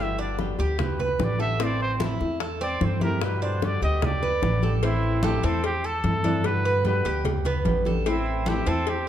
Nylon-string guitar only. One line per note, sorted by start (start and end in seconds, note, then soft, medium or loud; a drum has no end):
0.00 0.37 B2 medium
0.00 0.38 D3 medium
0.00 0.38 G3 medium
0.00 0.38 B3 medium
0.00 0.39 G4 medium
0.38 0.58 B2 medium
0.38 0.58 D3 medium
0.38 0.58 G3 medium
0.38 0.58 B3 medium
0.38 0.57 G4 medium
0.58 0.78 G3 soft
0.58 0.78 B3 soft
0.58 0.78 G4 medium
0.78 muted nylon-string guitar stroke medium
1.19 1.39 D3 soft
1.19 1.39 G3 medium
1.19 1.38 B3 soft
1.19 1.38 G4 medium
1.39 1.59 D3 medium
1.39 1.59 G3 soft
1.39 1.59 B3 medium
1.39 1.59 G4 medium
1.59 1.98 E3 medium
1.59 1.99 A3 medium
1.59 2.00 C4 medium
1.59 2.00 E4 medium
2.00 2.19 E3 medium
2.00 2.20 A3 medium
2.00 2.19 C4 medium
2.00 2.19 E4 medium
2.20 2.39 A3 soft
2.20 2.39 C4 soft
2.20 2.40 E4 soft
2.40 muted nylon-string guitar stroke medium
2.81 3.00 E3 soft
2.81 3.01 A3 soft
2.81 3.01 C4 soft
2.81 3.00 E4 medium
3.01 3.22 A3 medium
3.01 3.21 C4 medium
3.01 3.21 E4 medium
3.21 3.61 B2 medium
3.21 3.61 D3 medium
3.21 3.61 G3 medium
3.21 3.62 B3 medium
3.21 3.62 G4 medium
3.62 3.81 B2 medium
3.62 3.82 D3 medium
3.62 3.82 G3 medium
3.62 3.82 B3 medium
3.62 3.81 G4 medium
3.82 4.02 G3 soft
3.82 4.02 B3 soft
3.82 4.01 G4 medium
4.03 muted nylon-string guitar stroke medium
4.43 4.62 D3 soft
4.43 4.62 G3 soft
4.43 4.62 B3 soft
4.43 4.61 G4 soft
4.63 4.82 D3 medium
4.63 4.82 G3 medium
4.63 4.82 B3 medium
4.63 4.82 G4 medium
4.82 5.22 E3 medium
4.82 5.23 A3 medium
4.82 5.23 C4 medium
4.82 5.23 E4 medium
5.23 5.43 E3 medium
5.23 5.43 A3 medium
5.23 5.43 C4 medium
5.23 5.42 E4 medium
5.44 5.63 A3 soft
5.44 5.63 C4 soft
5.44 5.63 E4 medium
5.64 muted nylon-string guitar stroke medium
6.04 6.23 E3 soft
6.04 6.24 A3 soft
6.04 6.24 C4 medium
6.04 6.23 E4 soft
6.24 6.45 A3 medium
6.24 6.44 C4 medium
6.24 6.44 E4 medium
6.44 6.83 B2 medium
6.44 6.84 D3 medium
6.44 6.84 G3 medium
6.44 6.85 B3 medium
6.44 6.85 G4 medium
6.85 7.04 B2 medium
6.85 7.04 D3 medium
6.85 7.05 G3 medium
6.85 7.05 B3 medium
6.85 7.04 G4 medium
7.05 7.25 G3 soft
7.05 7.25 B3 soft
7.05 7.25 G4 soft
7.25 muted nylon-string guitar stroke medium
7.66 7.85 D3 soft
7.66 7.85 G3 medium
7.66 7.85 B3 medium
7.66 7.85 G4 medium
7.86 8.06 D3 medium
7.86 8.06 G3 medium
7.86 8.06 B3 medium
7.86 8.05 G4 medium
8.06 8.45 E3 medium
8.06 8.46 A3 medium
8.06 8.46 C4 medium
8.06 8.46 E4 medium
8.46 8.66 E3 medium
8.46 8.66 A3 medium
8.46 8.66 C4 medium
8.46 8.65 E4 medium
8.66 8.86 A3 soft
8.66 8.86 C4 soft
8.66 8.86 E4 medium
8.87 muted nylon-string guitar stroke medium